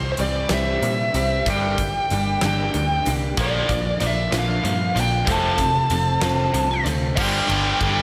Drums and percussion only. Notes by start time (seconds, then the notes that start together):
0.17 closed hi-hat
0.49 snare, closed hi-hat
0.83 closed hi-hat
1.14 closed hi-hat
1.46 kick, closed hi-hat
1.78 kick, closed hi-hat
2.10 closed hi-hat
2.41 snare, closed hi-hat
2.74 closed hi-hat
3.06 closed hi-hat
3.37 kick, closed hi-hat
3.69 kick, closed hi-hat
4.00 closed hi-hat
4.32 snare, closed hi-hat
4.65 closed hi-hat
4.97 closed hi-hat
5.27 kick, closed hi-hat
5.58 kick, closed hi-hat
5.90 closed hi-hat
6.21 snare, closed hi-hat
6.54 closed hi-hat
6.86 closed hi-hat
7.17 kick, crash
7.50 ride
7.81 kick, ride